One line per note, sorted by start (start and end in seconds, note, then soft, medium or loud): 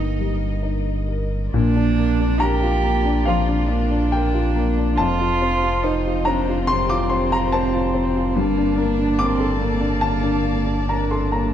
0.00 1.49 G1 medium
0.00 1.49 G2 soft
0.00 0.19 G3 soft
0.00 1.49 A#3 medium
0.00 0.63 D#4 soft
0.00 1.08 D#4 medium
0.00 1.09 A#4 soft
0.00 1.53 A#4 soft
0.00 1.53 D#5 soft
0.00 1.05 G5 medium
0.19 0.91 G3 soft
0.63 1.35 D#4 soft
1.09 1.53 A#4 soft
1.53 5.01 A#1 medium
1.53 3.23 A#2 medium
1.53 4.94 A#3 medium
1.53 2.42 D4 loud
1.53 4.94 F4 medium
1.53 4.93 D5 medium
1.76 2.11 D4 medium
1.98 2.32 A#3 medium
2.20 2.54 D4 medium
2.40 3.29 G4 loud
2.40 2.76 A#4 medium
2.40 3.22 A#5 loud
2.63 2.97 F4 medium
2.84 3.18 A#3 medium
3.05 3.39 D4 medium
3.25 3.61 F3 medium
3.25 3.70 F4 medium
3.25 4.07 F5 medium
3.49 3.82 D4 medium
3.69 4.04 A#3 medium
3.69 4.96 D4 medium
3.91 4.25 D4 medium
4.12 4.46 A#4 medium
4.12 4.94 G5 medium
4.34 4.68 F4 medium
4.55 4.89 A#3 medium
4.77 4.98 D4 medium
4.97 8.36 F1 medium
4.97 6.64 F2 medium
4.97 8.34 C4 medium
4.97 5.85 F4 loud
4.97 8.30 F4 medium
4.97 8.34 C5 medium
4.97 6.21 A5 loud
5.21 5.54 F4 medium
5.42 5.75 C4 medium
5.63 5.96 F4 medium
5.83 6.27 D#4 medium
5.83 6.17 C5 medium
6.06 6.39 F4 medium
6.25 6.60 C4 medium
6.25 6.66 D4 medium
6.25 6.64 A#5 loud
6.49 6.81 F4 medium
6.66 8.38 C4 medium
6.66 6.87 C6 loud
6.71 7.02 C3 medium
6.89 7.23 F4 medium
6.89 7.08 D6 loud
7.10 7.43 C4 medium
7.10 7.29 C6 loud
7.32 7.64 F4 medium
7.32 7.50 A#5 loud
7.52 7.85 C5 medium
7.52 8.31 A5 loud
7.74 8.06 F4 medium
7.94 8.27 C4 medium
8.16 8.36 F4 medium
8.35 11.54 G1 medium
8.35 9.98 G2 medium
8.35 11.54 A#3 medium
8.35 8.78 A#3 medium
8.35 11.54 D5 medium
8.35 11.54 A5 medium
8.58 8.90 D4 medium
8.76 9.10 A#3 medium
8.76 9.20 D4 medium
8.98 9.31 D4 medium
9.18 9.61 C4 medium
9.18 9.52 A#4 medium
9.18 9.98 D6 loud
9.40 9.72 A4 medium
9.59 10.87 A#3 medium
9.59 9.93 A#3 medium
9.81 10.14 D4 medium
10.01 10.36 D3 medium
10.01 10.83 A5 loud
10.24 10.57 D4 medium
10.45 10.79 A#3 medium
10.66 11.01 D4 medium
10.87 11.54 D4 medium
10.87 11.24 A#4 medium
10.87 11.09 A#5 medium
11.11 11.46 A4 soft
11.11 11.31 C6 medium
11.32 11.54 A#3 soft
11.32 11.53 A#5 medium